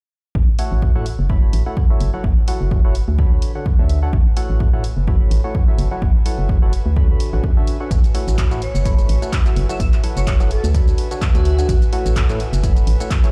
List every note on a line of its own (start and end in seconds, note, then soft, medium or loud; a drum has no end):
0.35 0.43 A1 loud
0.35 13.32 F#4 medium
0.35 kick loud
0.59 0.92 A3 medium
0.59 0.92 E4 medium
0.59 0.92 F#4 medium
0.59 0.92 A4 medium
0.59 0.92 C#5 medium
0.59 0.92 F#5 medium
0.59 open hi-hat loud
0.70 1.11 A1 medium
0.70 13.32 B4 medium
0.82 kick loud
0.95 1.06 A3 loud
0.95 1.06 E4 medium
0.95 1.06 F#4 medium
0.95 1.06 A4 medium
0.95 1.06 C#5 medium
0.95 1.06 F#5 loud
0.95 13.32 G#5 medium
1.06 open hi-hat medium
1.10 13.32 E5 medium
1.19 1.47 F#1 loud
1.30 1.63 A3 medium
1.30 1.63 E4 medium
1.30 1.63 F#4 medium
1.30 1.63 A4 medium
1.30 1.63 C#5 medium
1.30 1.63 B5 medium
1.30 kick loud
1.53 1.61 A1 loud
1.53 open hi-hat medium
1.66 1.77 A3 medium
1.66 1.77 E4 medium
1.66 1.77 F#4 medium
1.66 1.76 A4 medium
1.66 1.76 C#5 medium
1.66 1.76 F#5 medium
1.77 kick loud
1.90 2.10 F#3 medium
1.90 2.10 E4 medium
1.90 2.10 F#4 medium
1.90 2.10 A4 medium
1.90 2.10 C#5 medium
1.90 2.10 E5 medium
2.00 2.09 F#1 loud
2.00 open hi-hat medium
2.14 2.24 F#3 medium
2.14 2.24 E4 medium
2.14 2.24 F#4 medium
2.14 2.24 A4 medium
2.14 2.24 C#5 medium
2.14 2.24 F#5 loud
2.24 2.32 F#1 loud
2.24 kick loud
2.48 2.81 F#3 medium
2.48 2.81 E4 medium
2.48 2.81 F#4 medium
2.48 2.81 A4 medium
2.48 2.81 C#5 medium
2.48 2.81 F#5 medium
2.48 open hi-hat loud
2.61 3.00 F#1 medium
2.71 kick loud
2.85 2.95 F#3 loud
2.85 2.95 E4 medium
2.85 2.95 F#4 medium
2.85 2.95 A4 medium
2.85 2.95 C#5 medium
2.85 2.95 F#5 loud
2.95 open hi-hat medium
3.08 3.36 D2 loud
3.19 3.52 D3 medium
3.19 3.52 D4 medium
3.19 3.52 F#4 medium
3.19 3.52 A4 medium
3.19 3.52 C#5 medium
3.19 3.52 B5 medium
3.19 kick loud
3.42 open hi-hat loud
3.55 3.65 D3 medium
3.55 3.65 D4 medium
3.55 3.65 F#4 medium
3.55 3.65 A4 medium
3.55 3.65 C#5 medium
3.55 3.65 F#5 medium
3.66 kick loud
3.79 4.07 D2 medium
3.79 3.99 D3 medium
3.79 3.99 D4 medium
3.79 3.99 F#4 medium
3.79 3.99 A4 medium
3.79 3.99 C#5 medium
3.79 3.99 E5 medium
3.89 open hi-hat medium
4.03 4.12 D4 medium
4.03 4.12 F#4 medium
4.03 4.12 A4 medium
4.03 4.12 C#5 medium
4.03 4.12 F#5 loud
4.13 4.21 A1 loud
4.13 kick loud
4.37 4.70 A3 medium
4.37 4.70 E4 medium
4.37 4.70 F#4 medium
4.37 4.70 A4 medium
4.37 4.70 C#5 medium
4.37 4.70 F#5 medium
4.37 open hi-hat loud
4.50 4.89 A1 medium
4.60 kick loud
4.73 4.84 A3 loud
4.73 4.84 E4 medium
4.73 4.84 F#4 medium
4.73 4.84 A4 medium
4.73 4.84 C#5 medium
4.73 4.84 F#5 loud
4.84 open hi-hat medium
4.97 5.25 F#1 medium
5.08 5.41 A3 medium
5.08 5.41 E4 medium
5.08 5.41 F#4 medium
5.08 5.41 A4 medium
5.08 5.41 C#5 medium
5.08 5.41 B5 medium
5.08 kick loud
5.31 5.39 A1 loud
5.31 open hi-hat loud
5.44 5.54 A3 medium
5.44 5.54 E4 medium
5.44 5.54 F#4 medium
5.44 5.54 A4 medium
5.44 5.54 C#5 medium
5.44 5.54 F#5 medium
5.55 kick loud
5.68 5.88 F#3 medium
5.68 5.88 E4 medium
5.68 5.88 F#4 medium
5.68 5.88 A4 medium
5.68 5.88 C#5 medium
5.68 5.88 E5 medium
5.78 5.87 F#1 loud
5.78 open hi-hat medium
5.91 6.02 F#3 medium
5.91 6.02 E4 medium
5.91 6.02 F#4 medium
5.91 6.02 A4 medium
5.91 6.02 C#5 medium
5.91 6.02 F#5 loud
6.02 6.10 F#1 loud
6.02 kick loud
6.26 6.59 F#3 medium
6.26 6.59 E4 medium
6.26 6.59 F#4 medium
6.26 6.59 A4 medium
6.26 6.59 C#5 medium
6.26 6.59 F#5 medium
6.26 open hi-hat loud
6.39 6.78 F#1 medium
6.49 kick loud
6.62 6.72 F#3 loud
6.62 6.72 E4 medium
6.62 6.72 F#4 medium
6.62 6.72 A4 medium
6.62 6.72 C#5 medium
6.62 6.72 F#5 loud
6.73 open hi-hat medium
6.86 7.14 D2 loud
6.96 7.30 D3 medium
6.96 7.30 D4 medium
6.96 7.30 F#4 medium
6.96 7.30 A4 medium
6.96 7.30 C#5 medium
6.96 7.30 B5 medium
6.96 kick loud
7.20 open hi-hat loud
7.33 7.40 A1 medium
7.33 7.43 D3 medium
7.33 7.43 D4 medium
7.33 7.43 F#4 medium
7.33 7.43 A4 medium
7.33 7.43 C#5 medium
7.33 7.43 F#5 medium
7.44 7.52 F#2 loud
7.44 kick loud
7.57 7.77 D3 medium
7.57 7.77 D4 medium
7.57 7.77 F#4 medium
7.57 7.77 A4 medium
7.57 7.77 C#5 medium
7.57 7.77 E5 medium
7.67 open hi-hat medium
7.80 7.90 D4 medium
7.80 7.90 F#4 medium
7.80 7.90 A4 medium
7.80 7.90 C#5 medium
7.80 7.90 F#5 loud
7.91 7.99 A1 loud
7.91 kick loud
7.91 closed hi-hat medium
7.91 shaker medium
8.04 closed hi-hat soft
8.04 shaker soft
8.14 8.48 A3 medium
8.14 8.48 E4 medium
8.14 8.48 F#4 medium
8.14 8.48 A4 medium
8.14 8.48 C#5 medium
8.14 8.48 F#5 medium
8.14 open hi-hat loud
8.28 8.67 A1 medium
8.28 closed hi-hat soft
8.28 shaker medium
8.38 kick loud
8.38 clap loud
8.38 closed hi-hat medium
8.38 shaker medium
8.51 8.61 A3 loud
8.51 8.61 E4 medium
8.51 8.61 F#4 medium
8.51 8.61 A4 medium
8.51 8.61 C#5 medium
8.51 8.61 F#5 loud
8.51 closed hi-hat soft
8.51 shaker soft
8.62 9.28 C#5 medium
8.62 open hi-hat medium
8.75 9.03 F#1 loud
8.75 closed hi-hat soft
8.75 shaker medium
8.85 9.19 A3 medium
8.85 9.19 E4 medium
8.85 9.19 F#4 medium
8.85 9.19 A4 medium
8.85 9.19 C#5 medium
8.85 9.19 B5 medium
8.85 kick loud
8.85 closed hi-hat medium
8.85 shaker medium
8.99 closed hi-hat soft
8.99 shaker soft
9.09 9.17 A1 loud
9.09 open hi-hat loud
9.22 9.32 A3 medium
9.22 9.32 E4 medium
9.22 9.32 F#4 medium
9.22 9.32 A4 medium
9.22 9.32 C#5 medium
9.22 9.32 F#5 loud
9.22 closed hi-hat soft
9.22 shaker medium
9.33 kick loud
9.33 clap loud
9.33 closed hi-hat medium
9.33 shaker medium
9.46 9.66 F#3 medium
9.46 9.66 E4 medium
9.46 9.66 F#4 medium
9.46 9.66 A4 medium
9.46 9.66 C#5 medium
9.46 9.66 E5 medium
9.46 closed hi-hat soft
9.46 shaker soft
9.56 9.64 F#1 loud
9.56 open hi-hat medium
9.69 9.80 F#3 medium
9.69 9.80 E4 medium
9.69 9.80 F#4 medium
9.69 9.80 A4 medium
9.69 9.80 C#5 medium
9.69 9.76 E5 medium
9.69 9.80 F#5 loud
9.69 closed hi-hat soft
9.69 shaker medium
9.80 9.88 F#1 loud
9.80 9.88 E5 medium
9.80 kick loud
9.80 closed hi-hat medium
9.80 shaker medium
9.93 clap soft
9.93 closed hi-hat soft
9.93 shaker soft
10.03 10.37 F#3 medium
10.03 10.37 E4 medium
10.03 10.37 F#4 medium
10.03 10.37 A4 medium
10.03 10.37 C#5 medium
10.03 10.37 F#5 medium
10.03 open hi-hat loud
10.17 10.56 F#1 medium
10.17 10.33 C#5 medium
10.17 closed hi-hat soft
10.17 shaker medium
10.27 kick loud
10.27 clap loud
10.27 closed hi-hat medium
10.27 shaker medium
10.40 10.50 F#3 loud
10.40 10.50 E4 medium
10.40 10.50 F#4 medium
10.40 10.50 A4 medium
10.40 10.50 C#5 medium
10.40 10.50 F#5 loud
10.40 closed hi-hat soft
10.40 shaker soft
10.51 10.68 A4 medium
10.51 open hi-hat medium
10.64 10.92 D2 loud
10.64 closed hi-hat soft
10.64 shaker medium
10.74 11.08 D3 medium
10.74 11.08 D4 medium
10.74 11.08 F#4 medium
10.74 11.08 A4 medium
10.74 11.08 C#5 medium
10.74 11.08 B5 medium
10.74 kick loud
10.74 closed hi-hat medium
10.74 shaker medium
10.88 closed hi-hat soft
10.88 shaker soft
10.98 open hi-hat loud
11.11 11.21 D3 medium
11.11 11.21 D4 medium
11.11 11.21 F#4 medium
11.11 11.21 A4 medium
11.11 11.21 C#5 medium
11.11 11.21 F#5 medium
11.11 closed hi-hat soft
11.11 shaker medium
11.22 kick loud
11.22 clap loud
11.22 closed hi-hat medium
11.22 shaker medium
11.35 11.63 D2 medium
11.35 11.55 D3 medium
11.35 11.55 D4 medium
11.35 11.74 F#4 medium
11.35 11.55 F#4 medium
11.35 11.55 A4 medium
11.35 11.55 C#5 medium
11.35 11.55 E5 medium
11.35 closed hi-hat soft
11.35 shaker soft
11.45 open hi-hat medium
11.58 11.68 D4 medium
11.58 11.68 F#4 medium
11.58 11.68 A4 medium
11.58 11.68 C#5 medium
11.58 11.68 F#5 loud
11.58 closed hi-hat soft
11.58 shaker medium
11.69 11.77 A1 loud
11.69 kick loud
11.69 closed hi-hat medium
11.69 shaker medium
11.82 closed hi-hat soft
11.82 shaker soft
11.93 12.26 A3 medium
11.93 12.26 E4 medium
11.93 12.26 F#4 medium
11.93 12.26 A4 medium
11.93 12.26 C#5 medium
11.93 12.26 F#5 medium
11.93 open hi-hat loud
12.06 12.45 A1 medium
12.06 closed hi-hat soft
12.06 shaker medium
12.16 kick loud
12.16 clap loud
12.16 closed hi-hat medium
12.16 shaker medium
12.29 12.39 A3 loud
12.29 12.39 E4 medium
12.29 12.39 F#4 medium
12.29 12.39 A4 medium
12.29 12.39 C#5 medium
12.29 12.39 F#5 loud
12.29 closed hi-hat soft
12.29 shaker soft
12.40 open hi-hat medium
12.53 12.81 F#1 loud
12.53 closed hi-hat soft
12.53 shaker medium
12.63 12.97 A3 medium
12.63 12.97 E4 medium
12.63 12.97 F#4 medium
12.63 12.97 A4 medium
12.63 12.97 C#5 medium
12.63 12.97 B5 medium
12.63 kick loud
12.63 closed hi-hat medium
12.63 shaker medium
12.77 closed hi-hat soft
12.77 shaker soft
12.87 12.95 A1 loud
12.87 open hi-hat medium
13.00 13.10 A3 medium
13.00 13.10 E4 medium
13.00 13.10 F#4 medium
13.00 13.10 A4 medium
13.00 13.10 C#5 medium
13.00 13.10 F#5 medium
13.00 closed hi-hat soft
13.00 shaker medium
13.11 kick loud
13.11 clap loud
13.11 closed hi-hat medium
13.11 shaker medium
13.24 13.32 F#3 medium
13.24 13.32 E4 medium
13.24 13.32 F#4 medium
13.24 13.32 A4 medium
13.24 13.32 C#5 medium
13.24 13.32 E5 medium
13.24 closed hi-hat soft
13.24 shaker soft